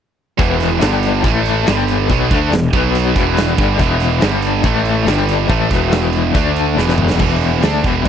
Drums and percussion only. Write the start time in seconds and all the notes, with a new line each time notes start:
0.39 kick, closed hi-hat
0.60 snare, closed hi-hat
0.81 snare, closed hi-hat
1.03 closed hi-hat
1.24 kick, closed hi-hat
1.45 closed hi-hat
1.67 snare, closed hi-hat
1.88 closed hi-hat
2.10 kick, closed hi-hat
2.31 kick, closed hi-hat
2.52 snare, closed hi-hat
2.73 kick, closed hi-hat
2.95 closed hi-hat
3.16 kick, closed hi-hat
3.37 snare, closed hi-hat
3.58 kick, closed hi-hat
3.79 kick, closed hi-hat
4.00 snare, closed hi-hat
4.21 snare, closed hi-hat
4.42 closed hi-hat
4.63 kick, closed hi-hat
4.85 closed hi-hat
5.07 snare, closed hi-hat
5.29 closed hi-hat
5.50 kick, closed hi-hat
5.71 kick, snare, closed hi-hat
5.92 snare, closed hi-hat
6.13 closed hi-hat
6.35 kick, closed hi-hat
6.56 closed hi-hat
6.78 snare
6.89 snare
6.98 mid tom
7.10 snare
7.19 kick, crash
7.41 closed hi-hat
7.62 snare, closed hi-hat
7.84 kick, snare, closed hi-hat
8.05 closed hi-hat